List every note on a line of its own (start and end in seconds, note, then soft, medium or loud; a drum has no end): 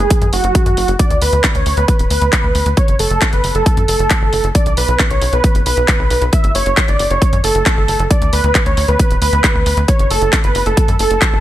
0.00 0.27 G#4 medium
0.10 kick loud
0.10 closed hi-hat medium
0.22 0.30 F#2 medium
0.22 closed hi-hat soft
0.33 0.42 F#1 loud
0.33 0.91 F#4 loud
0.33 open hi-hat medium
0.44 0.53 F#1 medium
0.44 closed hi-hat soft
0.55 kick loud
0.55 closed hi-hat medium
0.66 0.75 F#2 medium
0.66 closed hi-hat soft
0.77 0.86 F#1 medium
0.77 open hi-hat medium
0.88 0.97 F#1 medium
0.88 closed hi-hat soft
0.99 1.17 D5 loud
0.99 kick loud
0.99 closed hi-hat medium
1.10 1.19 D2 medium
1.10 closed hi-hat soft
1.22 1.31 D2 medium
1.22 1.49 B4 loud
1.22 open hi-hat loud
1.33 1.42 D2 medium
1.33 closed hi-hat soft
1.44 kick loud
1.44 clap loud
1.44 closed hi-hat medium
1.55 1.64 D2 medium
1.55 1.73 C#5 medium
1.55 closed hi-hat soft
1.66 1.75 D2 medium
1.66 open hi-hat medium
1.77 1.86 D2 medium
1.77 2.04 B4 medium
1.77 closed hi-hat soft
1.88 kick loud
1.88 closed hi-hat medium
1.99 2.08 D1 medium
1.99 closed hi-hat soft
2.10 2.19 D2 loud
2.10 2.68 B4 medium
2.10 open hi-hat loud
2.22 2.31 D2 medium
2.22 closed hi-hat soft
2.33 kick loud
2.33 clap loud
2.33 closed hi-hat medium
2.44 2.53 D2 medium
2.55 2.64 D2 medium
2.55 open hi-hat medium
2.66 2.75 D2 medium
2.66 closed hi-hat soft
2.77 2.95 C#5 loud
2.77 kick loud
2.77 closed hi-hat medium
2.88 2.97 F#1 medium
2.88 closed hi-hat soft
2.99 3.08 F#1 medium
2.99 3.26 A4 medium
2.99 open hi-hat loud
3.10 3.19 F#1 medium
3.10 closed hi-hat soft
3.22 kick loud
3.22 clap loud
3.22 closed hi-hat medium
3.33 3.42 F#1 medium
3.33 3.51 B4 medium
3.33 closed hi-hat soft
3.44 3.53 F#1 loud
3.44 open hi-hat medium
3.55 3.64 F#1 medium
3.55 3.82 A4 loud
3.55 closed hi-hat soft
3.66 kick loud
3.66 closed hi-hat medium
3.77 3.86 F#2 medium
3.77 closed hi-hat soft
3.88 3.97 F#1 loud
3.88 4.46 A4 loud
3.88 open hi-hat loud
3.99 4.08 F#1 medium
3.99 closed hi-hat soft
4.10 kick loud
4.10 clap loud
4.10 closed hi-hat medium
4.22 4.31 F#1 medium
4.33 4.42 F#1 loud
4.33 open hi-hat medium
4.44 4.53 F#1 medium
4.44 closed hi-hat soft
4.55 4.73 D5 loud
4.55 kick loud
4.55 closed hi-hat medium
4.66 4.75 B1 medium
4.66 closed hi-hat soft
4.77 4.86 B1 medium
4.77 5.04 B4 medium
4.77 open hi-hat loud
4.88 4.97 B1 medium
4.88 closed hi-hat soft
4.99 kick loud
4.99 clap loud
4.99 closed hi-hat medium
5.11 5.19 B1 medium
5.11 5.29 C#5 medium
5.11 closed hi-hat soft
5.22 5.31 B1 loud
5.22 open hi-hat loud
5.33 5.42 B1 medium
5.33 5.60 B4 medium
5.33 closed hi-hat soft
5.44 kick loud
5.44 closed hi-hat medium
5.55 5.64 F#1 medium
5.55 closed hi-hat soft
5.66 5.75 B1 loud
5.66 6.24 B4 loud
5.66 open hi-hat loud
5.77 5.86 B1 medium
5.77 closed hi-hat soft
5.88 kick loud
5.88 clap loud
5.88 closed hi-hat medium
5.99 6.08 B1 medium
6.10 6.19 B1 medium
6.10 open hi-hat medium
6.22 6.30 B1 medium
6.22 closed hi-hat soft
6.33 6.51 E5 loud
6.33 kick loud
6.33 closed hi-hat medium
6.44 6.53 F#1 medium
6.44 closed hi-hat soft
6.55 6.64 F#1 medium
6.55 6.82 C#5 loud
6.55 open hi-hat loud
6.66 6.75 F#1 medium
6.66 closed hi-hat soft
6.77 kick loud
6.77 clap loud
6.77 closed hi-hat medium
6.88 6.97 F#1 medium
6.88 7.06 D5 medium
6.88 closed hi-hat soft
6.99 7.08 F#1 loud
6.99 open hi-hat medium
7.10 7.19 F#1 medium
7.10 7.38 C#5 medium
7.10 closed hi-hat soft
7.22 kick loud
7.22 closed hi-hat medium
7.33 7.42 F#2 medium
7.33 closed hi-hat soft
7.44 7.53 F#1 loud
7.44 8.02 A4 loud
7.44 open hi-hat loud
7.55 7.64 F#1 medium
7.55 closed hi-hat soft
7.66 kick loud
7.66 clap loud
7.66 closed hi-hat medium
7.77 7.86 F#1 medium
7.88 7.97 F#1 medium
7.88 open hi-hat medium
7.99 8.08 F#1 medium
7.99 closed hi-hat soft
8.11 8.29 D5 loud
8.11 kick loud
8.11 closed hi-hat medium
8.22 8.31 D2 medium
8.22 closed hi-hat soft
8.33 8.42 D2 medium
8.33 8.60 B4 medium
8.33 open hi-hat loud
8.44 8.53 D2 medium
8.44 closed hi-hat soft
8.55 kick loud
8.55 clap loud
8.55 closed hi-hat medium
8.66 8.75 D2 medium
8.66 8.84 C#5 medium
8.66 closed hi-hat soft
8.77 8.86 D2 medium
8.77 open hi-hat medium
8.88 8.97 D2 medium
8.88 9.15 B4 medium
8.88 closed hi-hat soft
8.99 kick loud
8.99 closed hi-hat medium
9.11 9.19 D1 medium
9.11 closed hi-hat soft
9.22 9.31 D2 loud
9.22 9.79 B4 loud
9.22 open hi-hat loud
9.33 9.42 D2 medium
9.33 closed hi-hat soft
9.44 kick loud
9.44 clap loud
9.44 closed hi-hat medium
9.55 9.64 D2 medium
9.66 9.75 D2 medium
9.66 open hi-hat medium
9.77 9.86 D2 medium
9.77 closed hi-hat soft
9.88 10.06 C#5 loud
9.88 kick loud
9.88 closed hi-hat medium
9.99 10.08 F#1 medium
9.99 closed hi-hat soft
10.10 10.19 F#1 medium
10.10 10.38 A4 medium
10.10 open hi-hat medium
10.22 10.31 F#1 medium
10.22 closed hi-hat soft
10.33 kick loud
10.33 clap loud
10.33 closed hi-hat medium
10.44 10.53 F#1 medium
10.44 10.62 B4 medium
10.44 closed hi-hat soft
10.55 10.64 F#1 loud
10.55 open hi-hat medium
10.66 10.75 F#1 medium
10.66 10.93 A4 medium
10.66 closed hi-hat soft
10.77 kick loud
10.77 closed hi-hat medium
10.88 10.97 F#2 medium
10.88 closed hi-hat soft
10.99 11.08 F#1 loud
10.99 11.40 A4 loud
10.99 open hi-hat medium
11.11 11.19 F#1 medium
11.11 closed hi-hat soft
11.22 kick loud
11.22 clap loud
11.22 closed hi-hat medium
11.33 11.40 F#1 medium